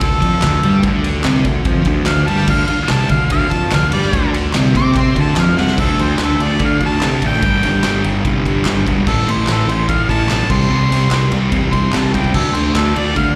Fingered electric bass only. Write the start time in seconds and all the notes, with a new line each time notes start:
0.02 D2
0.22 F2
0.44 D2
0.65 G2
0.83 D2
1.26 C2
1.45 D2
1.65 F2
1.86 D2
2.28 G2
2.48 D2
2.69 muted fingered electric bass stroke
2.90 C2
3.10 D2
3.31 D2
3.51 F2
3.74 D2
3.94 G2
4.13 D2
4.55 C2
4.75 C3
5.15 D2
5.37 F2
5.58 C2
5.78 D2
5.98 D2
6.18 D2
6.39 D2
6.60 D3
6.81 D2
7.01 C3
7.23 A1
7.42 G1
7.64 G1
7.83 G1
8.04 G1
8.25 C2
8.46 G1
8.66 G1
8.87 E1
9.07 A1
9.27 A1
9.48 A1
9.68 A1
9.89 A2
10.09 A1
10.30 B1
10.50 C2
10.70 C2
10.91 C2
11.11 C2
11.32 C2
11.52 E2
11.73 C2
11.94 C2
12.14 C#2
12.34 D2
12.55 D2
12.75 D2
12.96 D2
13.17 D3